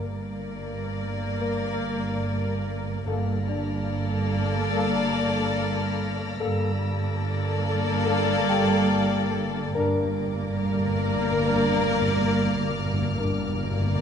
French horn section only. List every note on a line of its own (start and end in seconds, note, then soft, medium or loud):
1.40 1.72 A#3 medium
1.40 1.72 A#4 medium
3.07 3.38 A#3 medium
3.07 3.38 A4 medium
4.72 5.04 A#3 medium
4.72 5.04 A4 medium
6.40 6.72 A#3 medium
6.40 6.71 A4 medium
8.06 8.38 A#3 loud
8.06 8.38 A4 medium
9.75 10.07 D4 medium
9.75 10.07 A#4 medium
11.44 11.76 D4 medium
11.44 11.76 A#4 medium
13.18 13.51 D4 medium
13.18 13.51 A#4 medium